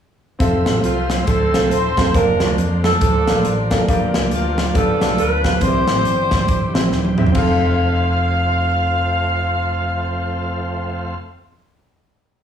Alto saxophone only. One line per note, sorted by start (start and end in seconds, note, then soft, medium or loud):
0.78 0.84 G4 soft
0.83 1.28 F4 medium
1.27 1.72 A4 medium
1.70 2.14 C5 loud
2.14 2.55 A#4 medium
2.84 2.91 A4 medium
3.00 3.41 A4 medium
4.32 4.77 F4 medium
4.76 5.18 A4 medium
5.19 5.64 B4 medium
5.62 6.92 C5 loud
7.35 11.15 F5 medium